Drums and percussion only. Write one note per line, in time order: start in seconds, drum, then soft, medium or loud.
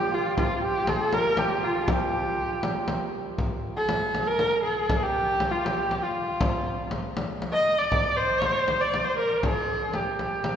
0.38 frame drum medium
0.87 frame drum medium
1.13 frame drum medium
1.37 frame drum medium
1.88 frame drum medium
2.63 frame drum medium
2.88 frame drum medium
3.38 frame drum medium
3.89 frame drum medium
4.15 frame drum medium
4.39 frame drum medium
4.89 frame drum medium
5.40 frame drum medium
5.66 frame drum medium
5.91 frame drum medium
6.41 frame drum medium
6.91 frame drum medium
7.17 frame drum medium
7.42 frame drum medium
7.92 frame drum medium
8.42 frame drum medium
8.68 frame drum medium
8.94 frame drum medium
9.43 frame drum medium
9.94 frame drum medium
10.19 frame drum medium
10.44 frame drum medium